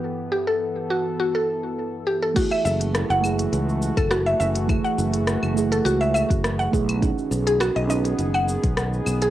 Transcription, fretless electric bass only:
X:1
M:4/4
L:1/16
Q:"Swing 16ths" 1/4=103
K:F#dor
V:1 name="Fretless electric bass" clef=bass
z16 | z2 F,,,3 F,,,3 C,,3 F,,,3 F,,,2- | F,,, z F,,,3 F,,,3 C,,3 F,,,3 B,,,2- | B,,, z B,,,3 B,,,3 F,,,3 B,,,3 B,,,2 |]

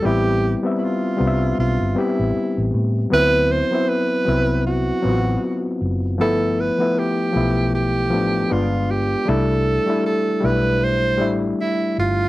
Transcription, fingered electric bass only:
X:1
M:4/4
L:1/16
Q:"Swing 16ths" 1/4=78
K:C
V:1 name="Fingered electric bass" clef=bass
A,,,3 z3 C,,2 B,,, G,,, z A,,, z A,,, A,,2 | D,,3 z3 C,,4 A,,,2 z2 ^F,,,2 | G,,,3 z3 B,,,4 A,,,2 G,,,4 | C,,3 z3 B,,,4 A,,,2 z2 G,,,2 |]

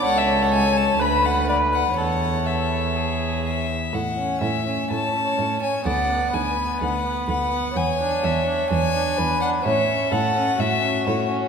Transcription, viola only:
X:1
M:4/4
L:1/8
Q:1/4=126
K:A
V:1 name="Viola"
c4 B2 B2 | c6- c z | z C2 C2 C2 C | B, B,2 B,2 B,2 B, |
z D2 D2 D2 D | C C2 C2 C2 C |]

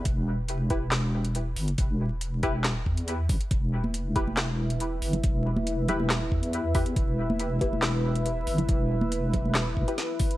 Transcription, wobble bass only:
X:1
M:4/4
L:1/16
Q:1/4=139
K:Em
V:1 name="Wobble bass" clef=bass
E,,,6 E,,,8 G,,,2 | E,,,6 E,,,4 E,,4 A,,, z | E,,,6 E,,,8 G,,,2 | E,,,6 E,,,4 E,,6 |
E,,,6 E,,,8 G,,,2 | E,,,6 E,,,4 E,,, z4 z |]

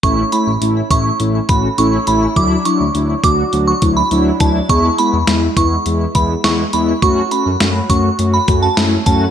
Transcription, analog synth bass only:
X:1
M:4/4
L:1/16
Q:1/4=103
K:A
V:1 name="Analog synth bass" clef=bass
A,,,2 z A,,, A,,,2 A,,,2 A,,,2 A,,,2 A,,,2 A,,,2 | D,,2 z D,, D,,2 D,,2 D,,2 D,,2 D,,2 D,,2 | E,,2 z E,, E,,2 E,,2 E,,2 E,,2 E,,2 E,,2 | F,,2 z F,, F,,2 F,,2 F,,2 F,,2 F,,2 F,,2 |]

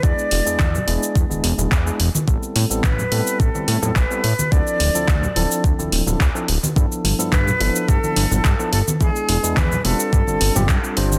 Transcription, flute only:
X:1
M:4/4
L:1/8
Q:1/4=107
K:Am
V:1 name="Flute"
d4 z4 | z2 B2 A2 B2 | d4 z4 | z2 B2 A3 A |
^G2 B A4 z |]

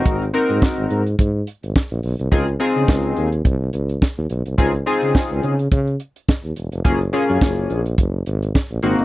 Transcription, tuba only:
X:1
M:4/4
L:1/16
Q:"Swing 16ths" 1/4=106
K:Db
V:1 name="Tuba" clef=bass
A,,,2 z A,, z A,,, A,,2 A,,2 z A,,, z B,,, _C,, =C,, | D,,2 z D, D,,2 E,,2 C,,2 D,,2 z E,, _C,, =C,, | D,,2 z D, z D,, D,2 D,2 z3 E,, _F,,, =F,,, | G,,,2 z G,, G,,,2 B,,,2 G,,,2 A,,,2 z B,,, A,,, =G,,, |]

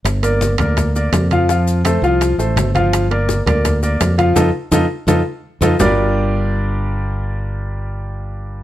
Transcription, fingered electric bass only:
X:1
M:4/4
L:1/8
Q:1/4=167
K:Gm
V:1 name="Fingered electric bass" clef=bass
G,,,3 D,,3 F,,2- | F,,3 C,,2 A,,, G,,,2- | G,,,3 D,,3 F,,2 | F,, z F,, z F,, z2 F,, |
G,,,8- | G,,,8 |]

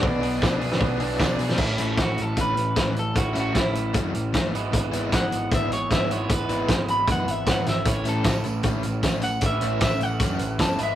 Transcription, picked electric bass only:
X:1
M:4/4
L:1/8
Q:1/4=153
K:A
V:1 name="Picked electric bass" clef=bass
B,,, B,,, B,,, B,,, B,,, B,,, B,,, B,,, | A,,, A,,, z A,,, A,,, A,,, A,,,2 | A,,, A,,, A,,,2 F,, A,,, =G,,, ^G,,, | G,,, G,,, G,,, G,,, G,,, G,,, G,,,2 |
G,,, G,,, G,,,2 F,, G,,, G,,, G,,, | A,,, A,,, A,,, A,,, A,,, A,,, A,,,2 | A,,, A,,, A,,,2 F,, A,,, =G,,, ^G,,, |]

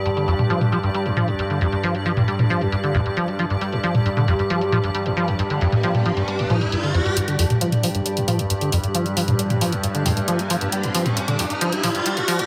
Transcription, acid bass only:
X:1
M:4/4
L:1/16
Q:1/4=135
K:Cdor
V:1 name="Acid bass" clef=bass
G,, D, F,, G,, F, G, F, G,, G, G,, F, F,, G,, D, F,, G,, | F, G, F, G,, G, G,, F, F,, G,, D, F,, G,, F, G, F, G,, | G, G,, F, F,, G,, D, F,, G,, F, G, F, G,, G, G,, F, F,, | G,, D, F,, G,, F, G, F, G,, G, G,, F, F,, G,, D, F,, G,, |
G,, D, F,, G,, F, G, F, G,, G, G,, F, F,, G,, D, F,, G,, | F, G, F, G,, G, G,, F, F,, G,, D, F,, G,, F, G, F, G,, | G, G,, F, F,, G,, D, F,, G,, F, G, F, G,, G, G,, F, F,, |]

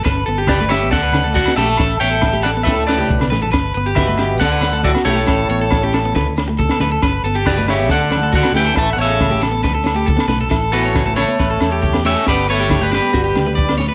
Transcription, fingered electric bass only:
X:1
M:4/4
L:1/8
Q:1/4=138
K:Amix
V:1 name="Fingered electric bass" clef=bass
G,,, G,,,3 D,,3 _B,,, | A,,, A,,,3 D,,2 B,,, A,,, | G,,, G,,,3 D,,3 B,,, | A,,, A,,,3 D,,3 D,, |
G,,, G,,,3 D,,3 D,, | A,,, A,,,3 D,,3 B,,, | A,,,4 A,,, E,,3 | G,,,4 G,,, D,,3 |]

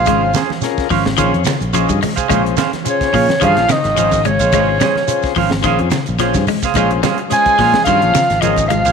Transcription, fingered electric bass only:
X:1
M:4/4
L:1/16
Q:"Swing 16ths" 1/4=108
K:Bbdor
V:1 name="Fingered electric bass" clef=bass
A,,,2 z4 A,,,2 B,,, F,, z B,,,2 G,, z2 | B,,,2 z4 B,, z G,, B,,, z A,,, A,,,3 B,,, | A,,,2 z4 A,,,2 B,,, F,, z B,,,2 G,, z2 | B,,,2 z4 B,, z G,, B,,, z A,,, A,,,3 B,,, |]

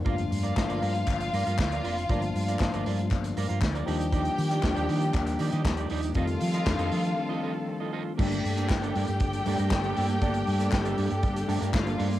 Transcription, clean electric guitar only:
X:1
M:4/4
L:1/16
Q:1/4=118
K:Gm
V:1 name="Clean electric guitar"
[FBd] z2 [FBd] z [FBd] [FBd] z3 [FBd] [FBf] z [FBd] [FBd] z | [FBd] z2 [FBd] z [FBd] [FBd] z3 [FBd] [FBf] z [FBd] [EGd] z | [EGd] z2 [EGd] z [EGd] [EGd] z3 [EGd] [EGe] z [EGd] [EGd] z | [FAe] z2 [FAe] z [FAe] [FAe] z2 [FAe] [FAe] z2 [FAe] [FAe] z |
[B,DA] z2 [B,DA] z [B,DA] [B,DA] z3 [B,DA] [B,DB] z [B,DA] [B,DA] z | [B,DA] z2 [B,DA] z [B,DA] [B,DA] z3 [B,DA] [B,DB] z [B,DA] [B,DA] z |]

